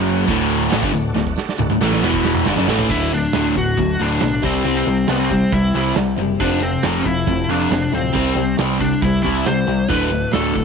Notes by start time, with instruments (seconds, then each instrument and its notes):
Already playing: picked electric bass F#1, distorted electric guitar F#2 C#3 F#3, tonewheel organ F#3 C#4 F#4
0.06 open hi-hat
0.26 picked electric bass D1, distorted electric guitar D2 A2 D3, tonewheel organ A3 D4 F#4, kick, open hi-hat, tambourine
0.50 open hi-hat, tambourine
0.70 picked electric bass A1, distorted electric guitar A2 E3, snare, open hi-hat, tambourine
0.82 picked electric bass G1, distorted electric guitar G2 D3, kick
0.93 picked electric bass D1, distorted electric guitar D2 A2, open hi-hat, tambourine
1.16 picked electric bass D1, distorted electric guitar D2 A2, snare
1.27 kick
1.36 snare, tambourine
1.49 snare
1.57 picked electric bass D1, distorted electric guitar D2 A2, mid tom, tambourine
1.70 picked electric bass D1, distorted electric guitar D2 A2, mid tom
1.80 picked electric bass A1, distorted electric guitar A2 E3 A3, snare, tambourine
1.93 snare
2.01 picked electric bass E1, distorted electric guitar E2 B2 E3, tonewheel organ B3 E4 B4, snare, tambourine
2.14 kick
2.23 snare, tambourine
2.35 mid tom
2.45 picked electric bass G1, distorted electric guitar G2 D3, tonewheel organ D4, snare, tambourine
2.49 tonewheel organ F#4 A4
2.57 picked electric bass F#1, distorted electric guitar F#2 C#3, snare
2.67 picked electric bass A1, distorted electric guitar A2 E3 A3, snare, tambourine
2.79 floor tom
2.89 picked electric bass D1, distorted electric guitar D2 A2 D3, steel-string acoustic guitar D3 F#3 A3 D4 F#4, lead electric guitar E4, kick, crash
3.10 distorted electric guitar D2 A2, steel-string acoustic guitar A3 D4 F#4, lead electric guitar D4
3.33 picked electric bass D1, distorted electric guitar D2 A2 D3, steel-string acoustic guitar F#3 A3 D4 F#4, snare, open hi-hat
3.55 picked electric bass D1, distorted electric guitar D2 A2, steel-string acoustic guitar A3 D4 F#4, lead electric guitar F#4, kick
3.77 picked electric bass D1, distorted electric guitar D2 A2, steel-string acoustic guitar D3 F#3 A3 D4 F#4, kick, open hi-hat
3.97 picked electric bass D1, distorted electric guitar D2 A2 D3, steel-string acoustic guitar A3 D4 F#4
4.02 lead electric guitar D4
4.21 picked electric bass B1, distorted electric guitar D2 A2, steel-string acoustic guitar F#3 A3 D4 F#4, snare, open hi-hat
4.42 picked electric bass C2, distorted electric guitar C3 G3 C4, steel-string acoustic guitar C4 E4 G4, lead electric guitar C4, kick
4.64 picked electric bass C2, steel-string acoustic guitar C3 E3 C4 E4 G4, distorted electric guitar C3 G3 C4, open hi-hat
4.76 lead electric guitar C4
4.86 picked electric bass C2, distorted electric guitar C3 G3, steel-string acoustic guitar C4 E4 G4
5.07 picked electric bass C2, distorted electric guitar C3 G3 C4, steel-string acoustic guitar E3 C4 E4, lead electric guitar B3, snare, open hi-hat
5.20 lead electric guitar C4
5.29 distorted electric guitar C3 G3, steel-string acoustic guitar C4 E4 G4, kick
5.51 picked electric bass C2, steel-string acoustic guitar C3 E3 C4 E4 G4, distorted electric guitar C3 G3, lead electric guitar E4, kick, open hi-hat
5.74 picked electric bass C2, distorted electric guitar C3 G3 C4, steel-string acoustic guitar C4 E4 G4, snare
5.95 picked electric bass C2, distorted electric guitar C3 G3, steel-string acoustic guitar E3 C4 E4 G4, snare, open hi-hat
6.18 picked electric bass F#1, distorted electric guitar C3 G3, steel-string acoustic guitar E4 G4
6.23 steel-string acoustic guitar C4
6.40 picked electric bass F1, distorted electric guitar F2 C3 F3, steel-string acoustic guitar F3 C4 F4 A4, lead electric guitar D4, kick, open hi-hat
6.62 distorted electric guitar F2 C3, lead electric guitar C4, steel-string acoustic guitar C4 F4 A4
6.83 picked electric bass F1, distorted electric guitar F2 C3 F3, steel-string acoustic guitar F3 C4, snare, open hi-hat
6.87 steel-string acoustic guitar F4 A4
7.05 picked electric bass F1, distorted electric guitar F2 C3, lead electric guitar E4, steel-string acoustic guitar F4 A4, kick
7.09 steel-string acoustic guitar C4
7.27 picked electric bass F1, distorted electric guitar F2 C3, steel-string acoustic guitar F3 C4 F4 A4, kick, open hi-hat
7.48 picked electric bass F1, distorted electric guitar F2 C3 F3, lead electric guitar D4, steel-string acoustic guitar F4 A4, snare
7.53 steel-string acoustic guitar C4
7.70 picked electric bass F1, distorted electric guitar F2 C3, steel-string acoustic guitar F3, snare, open hi-hat
7.74 steel-string acoustic guitar C4 F4 A4
7.92 picked electric bass D1, distorted electric guitar F2 C3, lead electric guitar C4, steel-string acoustic guitar F4 A4
7.96 steel-string acoustic guitar C4
8.14 picked electric bass C2, distorted electric guitar C3 G3 C4, steel-string acoustic guitar C3 E3 C4 E4 G4, kick, open hi-hat
8.35 picked electric bass C2, distorted electric guitar C3 G3, steel-string acoustic guitar C4 E4 G4
8.58 picked electric bass C2, distorted electric guitar C3 G3 C4, steel-string acoustic guitar E3 C4 E4 G4, snare, open hi-hat
8.80 distorted electric guitar C3 G3, steel-string acoustic guitar C4 E4 G4, lead electric guitar D4, kick
9.01 picked electric bass C2, distorted electric guitar C3 G3, steel-string acoustic guitar C3 E3 C4 E4, lead electric guitar E4, kick, open hi-hat
9.06 steel-string acoustic guitar G4
9.23 picked electric bass C2, distorted electric guitar C3 G3 C4, lead electric guitar E4, steel-string acoustic guitar G4, kick
9.27 steel-string acoustic guitar C4 E4
9.46 picked electric bass C2, distorted electric guitar C3 G3, steel-string acoustic guitar E3 C4 E4 G4, lead electric guitar C5, snare, open hi-hat
9.67 picked electric bass C2, distorted electric guitar C3 G3, steel-string acoustic guitar C4 E4 G4
9.89 picked electric bass D1, distorted electric guitar D2 A2 D3, steel-string acoustic guitar D3 F#3 A3 D4 F#4, tonewheel organ F#4, lead electric guitar B4, kick, open hi-hat
9.93 tonewheel organ D4 A4
10.12 distorted electric guitar D2 A2, steel-string acoustic guitar A3 D4 F#4
10.33 picked electric bass D1, distorted electric guitar D2 A2 D3, steel-string acoustic guitar F#3 A3 D4 F#4, lead electric guitar A4, snare, open hi-hat
10.55 picked electric bass D1, distorted electric guitar D2 A2, steel-string acoustic guitar A3 D4 F#4, kick